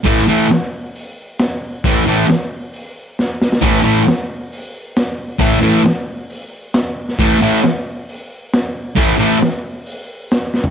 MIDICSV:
0, 0, Header, 1, 3, 480
1, 0, Start_track
1, 0, Tempo, 445765
1, 57, Time_signature, 4, 2, 24, 8
1, 11525, End_track
2, 0, Start_track
2, 0, Title_t, "Distorted electric guitar"
2, 0, Program_c, 0, 30
2, 50, Note_on_c, 0, 45, 99
2, 59, Note_on_c, 0, 52, 111
2, 67, Note_on_c, 0, 57, 107
2, 246, Note_off_c, 0, 45, 0
2, 250, Note_off_c, 0, 52, 0
2, 254, Note_off_c, 0, 57, 0
2, 302, Note_on_c, 0, 45, 79
2, 314, Note_on_c, 0, 52, 101
2, 320, Note_on_c, 0, 57, 84
2, 491, Note_off_c, 0, 45, 0
2, 498, Note_off_c, 0, 52, 0
2, 500, Note_off_c, 0, 57, 0
2, 1987, Note_on_c, 0, 45, 105
2, 1999, Note_on_c, 0, 52, 97
2, 2002, Note_on_c, 0, 57, 109
2, 2173, Note_off_c, 0, 45, 0
2, 2179, Note_off_c, 0, 52, 0
2, 2181, Note_off_c, 0, 57, 0
2, 2221, Note_on_c, 0, 45, 83
2, 2232, Note_on_c, 0, 52, 98
2, 2239, Note_on_c, 0, 57, 98
2, 2410, Note_off_c, 0, 45, 0
2, 2415, Note_off_c, 0, 52, 0
2, 2419, Note_off_c, 0, 57, 0
2, 3891, Note_on_c, 0, 45, 95
2, 3903, Note_on_c, 0, 52, 112
2, 3905, Note_on_c, 0, 57, 96
2, 4085, Note_off_c, 0, 45, 0
2, 4090, Note_off_c, 0, 52, 0
2, 4092, Note_off_c, 0, 57, 0
2, 4123, Note_on_c, 0, 45, 83
2, 4130, Note_on_c, 0, 52, 82
2, 4141, Note_on_c, 0, 57, 95
2, 4321, Note_off_c, 0, 45, 0
2, 4324, Note_off_c, 0, 52, 0
2, 4329, Note_off_c, 0, 57, 0
2, 5804, Note_on_c, 0, 45, 93
2, 5820, Note_on_c, 0, 52, 102
2, 5822, Note_on_c, 0, 57, 122
2, 6001, Note_off_c, 0, 45, 0
2, 6009, Note_off_c, 0, 52, 0
2, 6010, Note_off_c, 0, 57, 0
2, 6052, Note_on_c, 0, 45, 76
2, 6057, Note_on_c, 0, 52, 96
2, 6071, Note_on_c, 0, 57, 88
2, 6245, Note_off_c, 0, 45, 0
2, 6247, Note_off_c, 0, 52, 0
2, 6254, Note_off_c, 0, 57, 0
2, 7747, Note_on_c, 0, 45, 98
2, 7753, Note_on_c, 0, 52, 107
2, 7762, Note_on_c, 0, 57, 116
2, 7932, Note_off_c, 0, 45, 0
2, 7935, Note_off_c, 0, 52, 0
2, 7940, Note_off_c, 0, 57, 0
2, 7985, Note_on_c, 0, 45, 89
2, 7992, Note_on_c, 0, 52, 83
2, 7997, Note_on_c, 0, 57, 89
2, 8172, Note_off_c, 0, 45, 0
2, 8175, Note_off_c, 0, 52, 0
2, 8177, Note_off_c, 0, 57, 0
2, 9647, Note_on_c, 0, 45, 88
2, 9655, Note_on_c, 0, 52, 97
2, 9664, Note_on_c, 0, 57, 109
2, 9843, Note_off_c, 0, 45, 0
2, 9847, Note_off_c, 0, 52, 0
2, 9852, Note_off_c, 0, 57, 0
2, 9890, Note_on_c, 0, 45, 97
2, 9907, Note_on_c, 0, 52, 92
2, 9914, Note_on_c, 0, 57, 96
2, 10085, Note_off_c, 0, 45, 0
2, 10093, Note_off_c, 0, 52, 0
2, 10097, Note_off_c, 0, 57, 0
2, 11525, End_track
3, 0, Start_track
3, 0, Title_t, "Drums"
3, 59, Note_on_c, 9, 36, 115
3, 59, Note_on_c, 9, 46, 55
3, 167, Note_off_c, 9, 36, 0
3, 167, Note_off_c, 9, 46, 0
3, 544, Note_on_c, 9, 46, 52
3, 551, Note_on_c, 9, 38, 108
3, 651, Note_off_c, 9, 46, 0
3, 659, Note_off_c, 9, 38, 0
3, 1023, Note_on_c, 9, 46, 56
3, 1131, Note_off_c, 9, 46, 0
3, 1494, Note_on_c, 9, 46, 56
3, 1502, Note_on_c, 9, 38, 112
3, 1602, Note_off_c, 9, 46, 0
3, 1610, Note_off_c, 9, 38, 0
3, 1983, Note_on_c, 9, 36, 127
3, 1984, Note_on_c, 9, 46, 64
3, 2091, Note_off_c, 9, 36, 0
3, 2091, Note_off_c, 9, 46, 0
3, 2465, Note_on_c, 9, 46, 58
3, 2472, Note_on_c, 9, 38, 96
3, 2572, Note_off_c, 9, 46, 0
3, 2580, Note_off_c, 9, 38, 0
3, 2941, Note_on_c, 9, 46, 57
3, 3049, Note_off_c, 9, 46, 0
3, 3435, Note_on_c, 9, 38, 60
3, 3543, Note_off_c, 9, 38, 0
3, 3678, Note_on_c, 9, 38, 98
3, 3786, Note_off_c, 9, 38, 0
3, 3796, Note_on_c, 9, 38, 95
3, 3903, Note_off_c, 9, 38, 0
3, 3905, Note_on_c, 9, 36, 117
3, 3911, Note_on_c, 9, 46, 57
3, 4013, Note_off_c, 9, 36, 0
3, 4019, Note_off_c, 9, 46, 0
3, 4389, Note_on_c, 9, 46, 50
3, 4396, Note_on_c, 9, 38, 109
3, 4496, Note_off_c, 9, 46, 0
3, 4504, Note_off_c, 9, 38, 0
3, 4871, Note_on_c, 9, 46, 54
3, 4979, Note_off_c, 9, 46, 0
3, 5341, Note_on_c, 9, 46, 62
3, 5349, Note_on_c, 9, 38, 102
3, 5449, Note_off_c, 9, 46, 0
3, 5456, Note_off_c, 9, 38, 0
3, 5816, Note_on_c, 9, 36, 123
3, 5821, Note_on_c, 9, 46, 65
3, 5923, Note_off_c, 9, 36, 0
3, 5928, Note_off_c, 9, 46, 0
3, 6301, Note_on_c, 9, 46, 54
3, 6309, Note_on_c, 9, 38, 106
3, 6409, Note_off_c, 9, 46, 0
3, 6416, Note_off_c, 9, 38, 0
3, 6780, Note_on_c, 9, 46, 54
3, 6888, Note_off_c, 9, 46, 0
3, 7252, Note_on_c, 9, 46, 54
3, 7260, Note_on_c, 9, 38, 122
3, 7360, Note_off_c, 9, 46, 0
3, 7368, Note_off_c, 9, 38, 0
3, 7629, Note_on_c, 9, 38, 35
3, 7737, Note_off_c, 9, 38, 0
3, 7740, Note_on_c, 9, 36, 112
3, 7745, Note_on_c, 9, 46, 59
3, 7847, Note_off_c, 9, 36, 0
3, 7852, Note_off_c, 9, 46, 0
3, 8218, Note_on_c, 9, 46, 57
3, 8225, Note_on_c, 9, 38, 101
3, 8325, Note_off_c, 9, 46, 0
3, 8333, Note_off_c, 9, 38, 0
3, 8711, Note_on_c, 9, 46, 55
3, 8819, Note_off_c, 9, 46, 0
3, 9183, Note_on_c, 9, 46, 51
3, 9191, Note_on_c, 9, 38, 116
3, 9291, Note_off_c, 9, 46, 0
3, 9299, Note_off_c, 9, 38, 0
3, 9661, Note_on_c, 9, 36, 115
3, 9661, Note_on_c, 9, 46, 65
3, 9768, Note_off_c, 9, 36, 0
3, 9769, Note_off_c, 9, 46, 0
3, 10140, Note_on_c, 9, 46, 54
3, 10148, Note_on_c, 9, 38, 97
3, 10248, Note_off_c, 9, 46, 0
3, 10255, Note_off_c, 9, 38, 0
3, 10621, Note_on_c, 9, 46, 64
3, 10728, Note_off_c, 9, 46, 0
3, 11102, Note_on_c, 9, 46, 61
3, 11109, Note_on_c, 9, 38, 106
3, 11210, Note_off_c, 9, 46, 0
3, 11217, Note_off_c, 9, 38, 0
3, 11347, Note_on_c, 9, 38, 65
3, 11455, Note_off_c, 9, 38, 0
3, 11455, Note_on_c, 9, 43, 99
3, 11525, Note_off_c, 9, 43, 0
3, 11525, End_track
0, 0, End_of_file